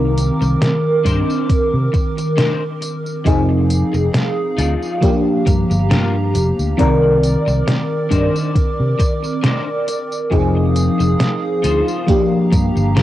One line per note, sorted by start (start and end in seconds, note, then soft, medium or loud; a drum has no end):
0.00 0.29 C2 loud
0.00 3.17 D#3 medium
0.00 3.18 C4 medium
0.00 3.19 A#4 loud
0.00 3.23 A#4 medium
0.00 3.23 D6 medium
0.18 closed hi-hat medium
0.18 tambourine medium
0.41 0.55 C2 medium
0.41 muted clean electric guitar stroke medium
0.41 tambourine soft
0.61 muted clean electric guitar stroke soft
0.61 snare loud
0.61 closed hi-hat medium
0.61 tambourine soft
1.05 1.22 G2 medium
1.05 1.49 D4 medium
1.05 1.49 D#4 medium
1.05 1.50 A#4 medium
1.05 1.50 C5 medium
1.05 kick medium
1.05 closed hi-hat medium
1.05 tambourine medium
1.30 tambourine soft
1.49 kick loud
1.49 closed hi-hat medium
1.49 tambourine soft
1.74 1.87 C3 medium
1.93 muted clean electric guitar stroke loud
1.93 kick loud
1.93 closed hi-hat medium
1.93 tambourine medium
2.17 muted clean electric guitar stroke soft
2.17 closed hi-hat soft
2.17 tambourine soft
2.37 2.61 D4 medium
2.37 2.62 D#4 medium
2.37 2.62 A#4 medium
2.37 2.62 C5 loud
2.37 snare loud
2.37 closed hi-hat medium
2.37 tambourine soft
2.81 muted clean electric guitar stroke soft
2.81 closed hi-hat medium
2.81 tambourine medium
3.06 tambourine soft
3.25 3.82 F1 loud
3.25 4.94 F3 medium
3.25 4.94 C4 medium
3.25 4.95 D#4 medium
3.25 5.01 G#4 medium
3.25 4.95 G#4 medium
3.25 6.75 F5 medium
3.25 muted clean electric guitar stroke loud
3.25 kick loud
3.25 closed hi-hat medium
3.25 tambourine soft
3.49 muted clean electric guitar stroke soft
3.70 closed hi-hat medium
3.70 tambourine medium
3.93 4.08 F1 medium
3.93 muted clean electric guitar stroke medium
3.93 tambourine soft
4.14 muted clean electric guitar stroke soft
4.14 snare loud
4.14 closed hi-hat medium
4.14 tambourine soft
4.58 4.75 D2 medium
4.58 5.02 D#4 medium
4.58 5.03 F4 medium
4.58 5.03 G#4 medium
4.58 5.03 D5 medium
4.58 closed hi-hat medium
4.58 tambourine medium
4.83 tambourine soft
5.01 6.70 F3 medium
5.01 6.71 A#3 medium
5.01 6.71 D4 medium
5.01 6.77 G4 medium
5.01 6.72 G4 medium
5.01 6.77 A#5 medium
5.01 kick loud
5.01 closed hi-hat medium
5.01 tambourine soft
5.46 5.63 G2 medium
5.46 muted clean electric guitar stroke loud
5.46 kick loud
5.46 closed hi-hat medium
5.46 tambourine medium
5.70 5.92 G1 medium
5.70 muted clean electric guitar stroke soft
5.70 tambourine soft
5.90 6.37 G2 medium
5.90 6.14 D4 medium
5.90 6.15 F4 medium
5.90 6.15 G4 medium
5.90 6.15 A#4 loud
5.90 snare loud
5.90 closed hi-hat medium
5.90 tambourine soft
6.34 6.51 F1 medium
6.34 muted clean electric guitar stroke soft
6.34 closed hi-hat medium
6.34 tambourine medium
6.59 6.73 D2 medium
6.59 tambourine soft
6.77 7.35 C2 loud
6.77 10.23 D#3 loud
6.77 10.24 C4 medium
6.77 10.28 A#4 medium
6.77 10.25 A#4 loud
6.77 10.24 D5 medium
6.77 10.28 D6 loud
6.77 muted clean electric guitar stroke loud
6.77 kick loud
6.77 closed hi-hat medium
6.77 tambourine soft
7.02 muted clean electric guitar stroke soft
7.23 closed hi-hat medium
7.23 tambourine medium
7.46 7.61 C2 medium
7.46 muted clean electric guitar stroke medium
7.46 tambourine soft
7.66 muted clean electric guitar stroke soft
7.66 snare loud
7.66 closed hi-hat medium
7.66 tambourine soft
8.10 8.28 G2 medium
8.10 8.55 D4 medium
8.10 8.55 D#4 medium
8.10 8.55 A#4 medium
8.10 8.56 C5 loud
8.10 kick medium
8.10 closed hi-hat medium
8.10 tambourine medium
8.36 tambourine soft
8.55 kick loud
8.55 closed hi-hat medium
8.55 tambourine soft
8.80 8.93 C3 medium
8.99 muted clean electric guitar stroke loud
8.99 kick loud
8.99 closed hi-hat medium
8.99 tambourine medium
9.23 muted clean electric guitar stroke soft
9.23 tambourine soft
9.43 9.67 D4 medium
9.43 9.67 D#4 medium
9.43 9.68 A#4 medium
9.43 9.68 C5 loud
9.43 snare loud
9.43 closed hi-hat medium
9.43 tambourine soft
9.87 muted clean electric guitar stroke soft
9.87 closed hi-hat medium
9.87 tambourine medium
10.12 tambourine soft
10.30 10.88 F1 loud
10.30 12.00 F3 medium
10.30 12.00 C4 medium
10.30 12.01 D#4 medium
10.30 12.06 G#4 medium
10.30 12.01 G#4 medium
10.30 13.03 F5 medium
10.30 12.06 D#6 medium
10.30 muted clean electric guitar stroke loud
10.30 kick loud
10.30 closed hi-hat medium
10.30 tambourine soft
10.55 muted clean electric guitar stroke soft
10.76 closed hi-hat medium
10.76 tambourine medium
10.99 11.14 F1 medium
10.99 muted clean electric guitar stroke medium
10.99 tambourine soft
11.19 muted clean electric guitar stroke soft
11.19 snare loud
11.19 closed hi-hat medium
11.19 tambourine soft
11.63 11.81 D2 medium
11.63 12.08 D#4 medium
11.63 12.08 F4 medium
11.63 12.08 G#4 medium
11.63 12.09 C5 loud
11.63 closed hi-hat medium
11.63 tambourine medium
11.88 tambourine soft
12.06 13.03 F3 medium
12.06 13.03 A#3 medium
12.06 13.03 D4 medium
12.06 13.03 G4 medium
12.06 13.03 A#5 loud
12.06 kick loud
12.06 closed hi-hat medium
12.06 tambourine soft
12.52 12.69 G2 medium
12.52 muted clean electric guitar stroke loud
12.52 kick loud
12.52 closed hi-hat medium
12.52 tambourine medium
12.76 12.98 G1 loud
12.76 muted clean electric guitar stroke soft
12.76 tambourine soft
12.96 13.03 G2 medium
12.96 13.03 D4 medium
12.96 13.03 F4 medium
12.96 13.03 G4 medium
12.96 13.03 A#4 loud
12.96 snare loud
12.96 closed hi-hat medium
12.96 tambourine soft